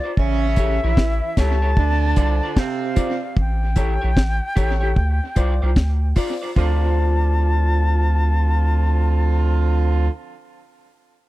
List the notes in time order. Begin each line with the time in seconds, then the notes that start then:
Already playing: D5
0.03 F4 C5 D5
0.17 A1 C#3 C#4 E5, kick
0.56 E4 G4 A4 C#5, kick, closed hi-hat
0.82 A#1 E3 E4 G4 C#5
0.97 A1, kick, snare
1.37 C#2 E4 G4 A4 C#5 A5, kick, snare, closed hi-hat
1.62 E4 G4 A4 C#5
1.77 D2 D3 D4, kick
2.16 C2 F4 C5 D5, kick, closed hi-hat
2.43 F4 C5 D5
2.57 C3 C4 F5, kick, snare
2.96 F4 C5 D5, kick, closed hi-hat
3.22 C5 D5
3.37 A1 G5, kick
3.76 E4 G4 A4 C#5, kick, closed hi-hat
4.02 A#1 E4 G4 C#5
4.17 A1, kick, snare
4.56 A1 E4 G4 A4 C#5, kick, closed hi-hat
4.81 E4 G4 A4 C#5
4.96 D2, kick
5.36 C2 F4 C5 D5, kick, closed hi-hat
5.62 C2 F4 C5 D5
5.76 D2, kick, snare
6.16 F4 C5 D5, kick, open hi-hat
6.42 F4 C5 D5
6.55 D2 D3 F3 C4 F4 C5 D5 A5, kick
6.61 D5